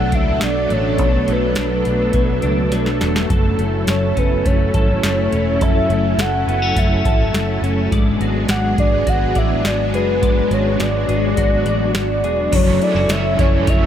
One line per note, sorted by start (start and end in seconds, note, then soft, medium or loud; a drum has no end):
0.00 0.13 B1 medium
0.00 0.97 B2 medium
0.00 0.40 F#3 medium
0.00 7.88 F#3 medium
0.00 0.70 A3 medium
0.00 7.88 A3 medium
0.00 3.26 B3 medium
0.00 0.11 D4 medium
0.00 3.26 D4 medium
0.00 7.88 A4 medium
0.00 0.16 F#5 loud
0.12 0.38 C#2 medium
0.12 0.98 D4 medium
0.12 0.42 E5 loud
0.12 kick medium
0.12 closed hi-hat soft
0.41 0.67 B1 medium
0.41 1.27 F#3 medium
0.41 0.74 D5 medium
0.41 snare loud
0.41 closed hi-hat medium
0.70 0.99 A1 medium
0.70 1.85 A3 soft
0.70 1.33 C#5 loud
0.70 closed hi-hat soft
0.98 1.24 B1 medium
0.98 3.30 B2 medium
0.98 1.55 D4 medium
0.98 kick medium
0.98 closed hi-hat medium
1.28 1.53 B1 medium
1.28 2.13 F#3 medium
1.28 closed hi-hat soft
1.32 1.58 B4 medium
1.55 1.82 B1 medium
1.55 2.42 D4 medium
1.55 2.98 B4 medium
1.55 snare medium
1.55 closed hi-hat medium
1.85 2.11 B1 medium
1.85 3.01 A3 medium
1.85 closed hi-hat soft
2.13 2.40 B1 medium
2.13 2.72 F#3 medium
2.13 kick medium
2.13 closed hi-hat medium
2.42 2.73 C#2 medium
2.42 3.35 D4 medium
2.42 closed hi-hat soft
2.72 3.03 B1 medium
2.72 6.22 F#3 medium
2.72 snare soft
2.72 closed hi-hat medium
2.86 snare soft
3.01 3.26 E1 medium
3.01 3.58 A3 medium
3.01 snare medium
3.01 closed hi-hat soft
3.16 snare medium
3.29 3.55 F#1 medium
3.29 5.60 F#2 medium
3.29 7.87 C#4 medium
3.29 7.87 E4 medium
3.29 3.86 A4 medium
3.29 kick medium
3.29 closed hi-hat medium
3.58 3.84 F#1 medium
3.58 4.44 A3 soft
3.58 closed hi-hat soft
3.87 4.13 F#1 medium
3.87 4.73 A4 medium
3.87 4.20 C#5 medium
3.87 snare medium
3.87 closed hi-hat medium
4.16 4.42 F#1 medium
4.16 5.31 C#4 medium
4.16 4.48 B4 medium
4.16 kick medium
4.16 closed hi-hat soft
4.45 4.71 F#1 medium
4.45 5.02 A3 medium
4.45 5.64 C#5 medium
4.45 kick medium
4.45 closed hi-hat medium
4.74 5.00 G#1 medium
4.74 5.60 A4 medium
4.74 kick medium
4.74 closed hi-hat soft
5.03 5.29 F#1 medium
5.03 5.89 A3 medium
5.03 snare loud
5.03 closed hi-hat medium
5.32 5.61 E1 medium
5.32 6.47 C#4 soft
5.32 closed hi-hat soft
5.61 5.86 F#1 medium
5.61 7.92 F#2 medium
5.61 6.18 A4 medium
5.61 6.23 E5 loud
5.61 kick medium
5.61 closed hi-hat medium
5.90 6.15 F#1 medium
5.90 6.75 A3 soft
5.90 closed hi-hat soft
6.18 6.44 F#1 medium
6.18 7.05 A4 medium
6.18 6.49 F#5 loud
6.18 snare loud
6.18 closed hi-hat medium
6.47 6.73 F#1 medium
6.47 6.62 B3 medium
6.47 6.80 F#5 medium
6.47 closed hi-hat soft
6.62 7.62 C#4 soft
6.76 7.02 F#1 medium
6.76 7.33 A3 medium
6.76 7.35 E5 medium
6.76 kick medium
6.76 closed hi-hat medium
7.05 7.30 G#1 medium
7.05 7.92 A4 medium
7.05 kick medium
7.05 closed hi-hat soft
7.34 7.59 F#1 medium
7.34 7.97 A3 medium
7.34 snare loud
7.34 closed hi-hat medium
7.62 7.88 F#1 medium
7.62 7.97 C#4 soft
7.62 closed hi-hat soft
7.92 8.17 G#1 medium
7.92 12.49 F#3 medium
7.92 10.21 G#3 medium
7.92 12.49 G#3 medium
7.92 12.50 B3 medium
7.92 12.49 D4 medium
7.92 10.20 G#4 medium
7.92 8.48 D5 medium
7.92 kick medium
7.92 closed hi-hat medium
8.20 8.46 G#1 medium
8.20 9.06 F#4 medium
8.20 closed hi-hat soft
8.48 8.74 G#1 medium
8.48 9.35 D5 medium
8.48 8.77 F#5 loud
8.48 snare loud
8.48 closed hi-hat medium
8.78 9.04 G#1 medium
8.78 9.93 G#4 medium
8.78 9.10 D5 medium
8.78 kick medium
8.78 closed hi-hat soft
9.07 9.32 G#1 medium
9.07 9.64 F#4 medium
9.07 9.40 F#5 loud
9.07 kick medium
9.07 closed hi-hat medium
9.35 9.61 A1 medium
9.35 10.22 D5 medium
9.35 9.68 E5 medium
9.35 kick medium
9.35 closed hi-hat soft
9.65 9.94 G#1 medium
9.65 10.51 F#4 medium
9.65 9.94 D5 loud
9.65 snare loud
9.65 closed hi-hat medium
9.94 10.23 F#1 medium
9.94 11.08 G#4 medium
9.94 10.55 B4 medium
9.94 closed hi-hat soft
10.22 10.48 G#1 medium
10.22 12.52 G#3 medium
10.22 12.51 F#4 medium
10.22 10.79 D5 medium
10.22 kick medium
10.22 closed hi-hat medium
10.51 10.76 G#1 medium
10.51 11.37 F#4 soft
10.51 10.83 C#5 medium
10.51 closed hi-hat soft
10.80 11.05 G#1 medium
10.80 11.65 D5 medium
10.80 11.96 D5 medium
10.80 snare loud
10.80 closed hi-hat medium
11.08 11.34 G#1 medium
11.08 12.23 G#4 medium
11.08 closed hi-hat soft
11.37 11.63 G#1 medium
11.37 11.95 F#4 medium
11.37 kick medium
11.37 closed hi-hat medium
11.66 11.91 A1 medium
11.66 12.59 D5 medium
11.66 closed hi-hat medium
11.95 12.24 G#1 medium
11.95 12.84 F#4 medium
11.95 12.56 D5 loud
11.95 snare loud
11.95 closed hi-hat medium
12.24 12.49 E1 medium
12.24 12.59 G#4 medium
12.24 closed hi-hat soft
12.52 12.78 F#1 medium
12.52 12.81 F#2 medium
12.52 12.82 C#3 medium
12.52 12.82 E3 medium
12.52 13.86 F#3 medium
12.52 13.86 A3 medium
12.52 12.81 A3 medium
12.52 13.86 C#4 medium
12.52 12.80 C#4 medium
12.52 13.86 E4 medium
12.52 13.86 A4 medium
12.52 12.84 C#5 loud
12.52 kick loud
12.52 closed hi-hat medium
12.52 crash medium
12.81 13.10 E3 soft
12.81 13.10 A3 soft
12.81 13.10 C#4 medium
12.81 12.96 E4 medium
12.81 13.13 D5 medium
12.81 closed hi-hat soft
12.95 13.08 F#1 medium
12.95 13.86 F#4 soft
13.09 13.35 F#1 medium
13.09 13.39 F#2 medium
13.09 13.39 C#3 medium
13.09 13.40 E3 medium
13.09 13.39 A3 medium
13.09 13.37 C#4 medium
13.09 13.66 C#5 medium
13.09 13.42 E5 loud
13.09 snare loud
13.09 closed hi-hat medium
13.09 tambourine medium
13.38 13.65 F#1 medium
13.38 13.66 E3 soft
13.38 13.67 A3 soft
13.38 13.68 C#4 soft
13.38 13.86 E4 medium
13.38 13.71 C#5 medium
13.38 kick loud
13.38 closed hi-hat soft
13.66 13.86 F#1 medium
13.66 13.86 C#3 medium
13.66 13.86 E3 medium
13.66 13.86 A3 medium
13.66 13.86 C#4 medium
13.66 13.86 C#5 medium
13.66 13.86 E5 loud
13.66 kick medium
13.66 closed hi-hat medium